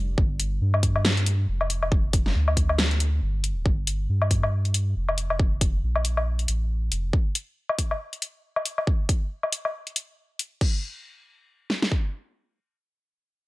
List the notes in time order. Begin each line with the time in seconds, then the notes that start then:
Already playing: F1 G3 D4 D5
0.18 G1, kick
0.40 closed hi-hat
0.61 G2
0.74 low woodblock
0.83 kick, closed hi-hat
0.96 low woodblock
1.05 snare
1.17 closed hi-hat
1.26 closed hi-hat
1.48 F1
1.61 low woodblock
1.70 closed hi-hat
1.83 low woodblock
1.92 kick
2.13 kick, closed hi-hat
2.26 snare
2.35 D2
2.48 low woodblock
2.57 kick, closed hi-hat
2.69 low woodblock
2.79 snare
2.91 closed hi-hat
3.00 closed hi-hat
3.22 G1
3.44 closed hi-hat
3.66 G1, kick
3.87 closed hi-hat
4.09 G2
4.22 low woodblock
4.31 kick, closed hi-hat
4.43 low woodblock
4.65 closed hi-hat
4.74 closed hi-hat
4.96 F1
5.09 low woodblock
5.18 closed hi-hat
5.30 low woodblock
5.39 kick
5.61 kick, closed hi-hat
5.83 A#1
5.96 low woodblock
6.05 closed hi-hat
6.17 low woodblock
6.39 closed hi-hat
6.48 A1, closed hi-hat
6.92 F1, closed hi-hat
7.13 kick
7.35 closed hi-hat
7.69 low woodblock
7.79 kick, closed hi-hat
7.91 low woodblock
8.13 closed hi-hat
8.22 closed hi-hat
8.56 low woodblock
8.65 closed hi-hat
8.78 low woodblock
8.87 kick
9.09 kick, closed hi-hat
9.43 low woodblock
9.52 closed hi-hat
9.65 low woodblock
9.87 closed hi-hat
9.96 closed hi-hat
10.39 closed hi-hat
10.61 kick, crash
11.70 snare
11.82 snare
11.92 kick